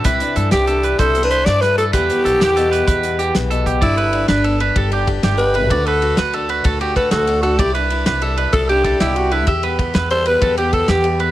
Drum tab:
RD |------------|------------|xxxxxxxxxxxx|xxxxxxxxxxxx|
HH |xxxxxxxxxxxx|xxxxxxxxxxxx|------------|------------|
SD |---o-----oo-|---o-----o--|---o-----o--|---o-----o--|
BD |o-----o-----|o-----o----o|o-----o-o---|o-----o-o---|

RD |xxxxxxxxxxxx|xxxxxxxxxxxx|
HH |------------|------------|
SD |---o-----o--|---o-----o--|
BD |o-----o-o---|o-o---o-o---|